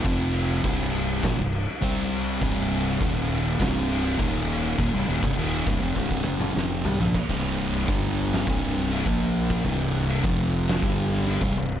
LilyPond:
<<
  \new Staff \with { instrumentName = "Distorted electric guitar" } { \clef bass \time 4/4 \key c \minor \tempo 4 = 102 <f, c f>4 <c, g, c>4 <bes, f>16 <c, g,>8 r16 <c g c'>4 | <c, g, c>4 <ees, bes, ees>4 <c, g, c>4 <ees, bes, ees>4 | <ees, bes,>16 <c, g,>16 <ees, bes,>16 <c, g,>16 <ees, bes, ees>8 <c, g,>16 <f, c>16 <c, g, c>8 <fis, des fis>8 <f, c f>8 <c g>16 <bes, f>16 | r16 <c, g, c>4 <g, d g>4 <c, g, c>4 <bes, f bes>8.~ |
<bes, f bes>16 <c, g, c>4 <f, c f>4 <g, d g>4 <c, g,>16 <c, g,>8 | }
  \new Staff \with { instrumentName = "Fingered electric bass" } { \clef bass \time 4/4 \key c \minor f,,4 c,,4 bes,,16 c,,8 r16 c,4 | c,,4 ees,,4 c,,4 ees,,4 | ees,,16 c,,16 ees,,16 c,,16 ees,,8 c,,16 f,,16 c,,8 fis,,8 f,,8 c,16 bes,,16 | r16 c,,4 g,,4 c,,4 bes,,8.~ |
bes,,16 c,,4 f,,4 g,,4 c,,16 c,,8 | }
  \new DrumStaff \with { instrumentName = "Drums" } \drummode { \time 4/4 <cymc bd>8 cymc8 <cymc bd>8 cymc8 <cymc bd sn>8 cymc8 <cymc bd>8 cymc8 | <cymc bd>8 cymc8 <cymc bd>8 cymc8 <cymc bd sn>8 cymc8 <cymc bd>8 cymc8 | <cymc bd>8 cymc16 bd16 cymc8 <cymc bd>8 bd16 bd8 toml16 sn8 tomfh16 tomfh16 | <cymc bd>16 bd8. cymc16 bd8. <cymc sn>16 bd8 sn16 cymc16 bd8. |
<cymc bd>16 bd8. cymc16 bd8. <cymc sn>16 bd8 sn16 cymc16 bd8. | }
>>